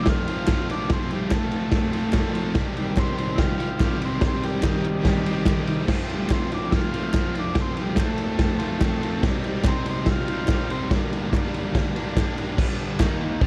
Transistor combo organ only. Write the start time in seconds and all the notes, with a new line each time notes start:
0.03 E4
0.09 F4
0.71 D4
0.92 C4
1.12 G3
1.34 A3
2.80 G3
2.99 C4
3.18 C4
3.35 E4 F4
4.05 C4
4.27 C4
4.45 G3
4.63 D#3 G3
6.14 G3
6.32 C4
6.54 D4
6.71 E4
6.76 F4
7.40 D4
7.61 C4
7.82 G3
8.06 A3
9.48 G3
9.68 C4
9.90 C4
10.06 E4
10.11 F4
10.71 C4